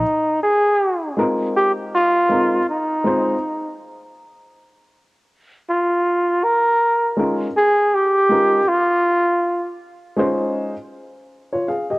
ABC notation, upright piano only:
X:1
M:4/4
L:1/16
Q:"Swing 16ths" 1/4=80
K:Bbdor
V:1 name="Upright piano"
z6 [A,CEFB]6 [A,CEFB]2 z2 | [A,CEFc]2 z12 z2 | z6 [A,DEFB]2 z4 [A,DEFB]2 z2 | z6 [A,DEFc]2 z4 z [Fd] [Af] [Ge] |]